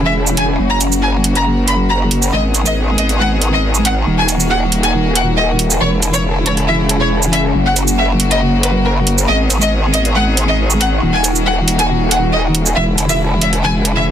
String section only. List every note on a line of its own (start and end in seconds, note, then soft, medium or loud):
0.00 2.29 C#3 medium
0.00 0.57 G#3 medium
0.00 0.57 E4 medium
0.59 2.31 A#3 medium
0.59 2.31 F#4 medium
2.33 5.77 D#3 medium
2.33 4.05 B3 medium
2.33 4.05 G#4 medium
4.07 5.79 A#3 medium
4.07 5.79 F#4 medium
5.81 9.25 C#3 medium
5.81 7.53 G#3 medium
5.81 7.53 E4 medium
7.55 9.27 A#3 medium
7.55 9.27 F#4 medium
9.28 12.73 D#3 medium
9.28 11.01 B3 medium
9.28 11.01 G#4 medium
11.02 12.75 A#3 medium
11.02 12.75 F#4 medium
12.76 14.11 C#3 medium
12.76 14.11 G#3 medium
12.76 14.11 E4 medium